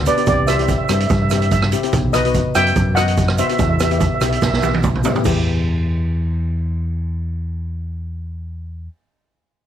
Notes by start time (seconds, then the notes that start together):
0.06 B3 D4 G4 B4 D5, closed hi-hat, shaker
0.17 B3 D4 G4, closed hi-hat, shaker
0.26 C2 G4 D5, kick, closed hi-hat, shaker
0.47 C4 E4 G4 C5 E5, cross-stick, closed hi-hat, shaker
0.55 E5
0.59 C4 E4 G4 E5, closed hi-hat
0.68 E5, kick, closed hi-hat, shaker
0.78 E5
0.84 E5
0.89 G2 C4 E4 G4, cross-stick, closed hi-hat, shaker
0.93 E5
1.00 E5, closed hi-hat
1.07 G2 E5, kick, closed hi-hat, shaker
1.15 E5
1.22 E5
1.30 C4 E4 G4 E5, cross-stick, closed hi-hat, shaker
1.38 E5, shaker
1.42 E5, closed hi-hat
1.51 E5, kick, closed hi-hat, shaker
1.62 cross-stick
1.72 C4 E4 G4, closed hi-hat, shaker
1.83 C4 E4 G4, closed hi-hat
1.93 B1, kick, closed hi-hat, shaker
2.13 B3 D#4 F#4 B4 D#5, cross-stick, closed hi-hat, shaker
2.25 B3 D#4 F#4, closed hi-hat
2.34 kick, closed hi-hat, shaker
2.55 F#2 B3 D#4 F#4 E5 G5, cross-stick, closed hi-hat, shaker
2.66 closed hi-hat
2.76 F#2, kick, closed hi-hat, shaker
2.95 B3 D#4 F#4 D#5 F#5, cross-stick, closed hi-hat, shaker
3.08 closed hi-hat, shaker
3.17 kick, closed hi-hat, shaker
3.28 cross-stick
3.38 B3 D#4 F#4 C5 E5, closed hi-hat, shaker
3.47 B3 D#4 F#4 E5, closed hi-hat, shaker
3.53 E5
3.59 E2 E5, kick, closed hi-hat, shaker
3.69 E5
3.76 E5, shaker
3.80 B3 E4 G4 E5, cross-stick, closed hi-hat
3.91 B3 E4 G4 E5, closed hi-hat, shaker
3.98 E5, kick, closed hi-hat, shaker
4.06 E5
4.14 E5
4.21 B1 B3 E4 G4 E5, cross-stick, closed hi-hat, shaker
4.29 E5, closed hi-hat
4.37 E5
4.41 B1 E5, kick, snare, shaker
4.50 E5, snare
4.59 E5, shaker
4.63 B3 E4 G4 E5, high tom
4.74 high tom
4.83 kick, mid tom, shaker
4.95 mid tom
5.04 B3 E4 G4, floor tom, shaker
5.15 B3 E4 G4, floor tom, shaker
5.22 E2 B3 E4 G4, kick, crash, shaker